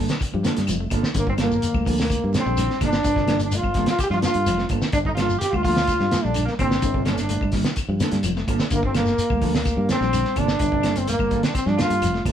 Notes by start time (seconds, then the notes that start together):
Already playing: A#3 D4 A4
0.00 G3
0.09 snare, closed hi-hat, shekere
0.20 kick, closed hi-hat, claves, shekere
0.32 G2 F3, high conga
0.43 D3 A#3 D4 F4 A4, muted fingered electric bass stroke, snare, closed hi-hat, high conga, shekere
0.57 G2, snare, closed hi-hat, shekere
0.67 F1 F3, closed hi-hat, high conga, claves, shekere
0.80 A3
0.90 G1 A#3 D4 F4 A4, kick, closed hi-hat, low conga, claves, shekere
1.03 snare, shekere
1.14 G1 D3 A#3, kick, closed hi-hat, low conga, shekere
1.18 A#3
1.27 C4 D4 F4, muted clean electric guitar stroke, kick, high conga
1.38 G3 A#3 F4 A4, snare, closed hi-hat, high conga, claves, shekere
1.42 A#3
1.51 shekere
1.61 muted fingered electric bass stroke, closed hi-hat, low conga, shekere
1.73 D2, kick, high conga, claves
1.85 F3 A#3 D4 A4, kick, open hi-hat, low conga, shekere
1.97 A#3, snare, shekere
2.01 A#3
2.10 kick, closed hi-hat, claves, shekere
2.24 G2
2.33 A#3 D4 F4 A4, snare, closed hi-hat, high conga, shekere
2.39 C4
2.46 A#1 G3 D4 F4 A4, shekere
2.57 D3, snare, closed hi-hat, high conga, claves, shekere
2.70 snare
2.81 G1 C3 A#3 D4 F4 A4, kick, snare, closed hi-hat, low conga, claves, shekere
2.85 D4
2.92 snare, shekere
3.04 G1 D3, kick, closed hi-hat, shekere
3.16 C3 D4 F4 A4, kick, snare
3.28 D3 A#3 D4 F4 A4, snare, closed hi-hat, high conga, claves, shekere
3.39 closed hi-hat, shekere
3.43 D4
3.51 A3, closed hi-hat, shekere
3.56 F4
3.63 G1, kick, high conga, claves
3.74 G3 A#3 D4 F4 A4, kick, snare, closed hi-hat, low conga, shekere
3.86 F4, snare, closed hi-hat, shekere
3.99 G4, kick, closed hi-hat, claves, shekere
4.04 G4
4.10 G2 F3 F4, snare
4.21 D3 A#3 D4 F4 A4, muted fingered electric bass stroke, snare, closed hi-hat, high conga, shekere
4.25 F4
4.33 G2 D4 A4, closed hi-hat
4.46 F1 F3, snare, closed hi-hat, high conga, claves, shekere
4.58 A3, snare, high conga
4.69 G1 A#3 D4 F4 A4, kick, closed hi-hat, low conga, claves, shekere
4.82 snare, low conga, shekere
4.92 G1 D3 D4, kick, closed hi-hat, shekere
5.04 D4 D#4 A4, kick, high conga
5.15 G3 A#3 D4 F4 A4, snare, closed hi-hat, high conga, claves, shekere
5.20 F4
5.29 shekere
5.38 G4, snare, closed hi-hat, shekere
5.51 D2 F4, kick, high conga, claves
5.56 F4
5.63 F3 A#3 D4 F4 A4, kick, open hi-hat, low conga, shekere
5.77 snare, shekere
5.87 kick, closed hi-hat, claves, shekere
6.00 G2, snare, high conga
6.11 A#3 F4 A4, snare, closed hi-hat, high conga, shekere
6.23 A#1 G3 D4 A4, shekere
6.34 D3, closed hi-hat, high conga, claves, shekere
6.45 A#3, snare
6.59 G1 C3 A#3 C4 D4 F4 A4, kick, closed hi-hat, low conga, claves, shekere
6.71 snare, shekere
6.82 G1 D3, kick, closed hi-hat, shekere
6.94 C3 D4 F4 A4, kick
7.05 D3 A#3 D4 F4 A4, snare, closed hi-hat, high conga, claves, shekere
7.10 D4
7.18 snare, closed hi-hat, shekere
7.29 A3, closed hi-hat, shekere
7.41 G1, kick, high conga, claves
7.52 G3 A#3 D4 F4, kick, snare, open hi-hat, low conga, shekere
7.64 snare, closed hi-hat, shekere
7.76 kick, closed hi-hat, claves, shekere
7.89 G2 F3
8.00 D3 A#3 D4 F4 A4, muted fingered electric bass stroke, snare, closed hi-hat, high conga, shekere
8.11 G2, snare, closed hi-hat, shekere
8.23 F1 F3, closed hi-hat, high conga, claves, shekere
8.36 A3, snare
8.47 G1 A#3 D4 F4 A4, kick, closed hi-hat, low conga, claves, shekere
8.59 snare, shekere
8.70 G1 D3 A#3, kick, closed hi-hat, low conga, shekere
8.75 A#3
8.82 C4 D4 F4 A4, kick
8.94 A#3 D4 F4 A4, muted clean electric guitar stroke, snare, closed hi-hat, high conga, claves, shekere
9.06 snare, shekere
9.18 muted fingered electric bass stroke, closed hi-hat, shekere
9.30 D2, kick, high conga, claves
9.41 F3 A#3 D4 F4 A4, kick, open hi-hat, low conga, shekere
9.55 A#3, snare, shekere
9.65 kick, closed hi-hat, claves, shekere
9.77 G2
9.89 A#3 C4 D4 F4 A4, snare, closed hi-hat, high conga, shekere
10.01 A#1 G3, snare, shekere
10.13 D3, snare, closed hi-hat, high conga, claves, shekere
10.25 snare
10.36 G1 C3 A#3 D4 F4 A4, kick, closed hi-hat, low conga, claves, shekere
10.48 snare, shekere
10.59 G1 D3, kick, closed hi-hat, low conga, shekere
10.72 C3 D4 F4 A4, kick
10.83 D3 A#3 D4 F4 A4, snare, closed hi-hat, high conga, claves, shekere
10.96 C4, closed hi-hat, shekere
11.08 A3 A#3, closed hi-hat, shekere
11.19 G1, kick, high conga, claves
11.31 G3 A#3 D4 F4 A4, kick, closed hi-hat, low conga, shekere
11.43 D4, snare, closed hi-hat, shekere
11.54 C4, kick, closed hi-hat, claves, shekere
11.66 G2 F3 D4, snare, high conga
11.78 D3 A#3 D4 F4 A4, muted fingered electric bass stroke, snare, closed hi-hat, high conga, shekere
11.82 F4
11.90 G2, closed hi-hat, shekere
12.02 F1 F3, closed hi-hat, high conga, claves, shekere
12.14 A3, snare
12.25 G1 A#3 D4 F4 A4, kick, closed hi-hat, low conga, claves, shekere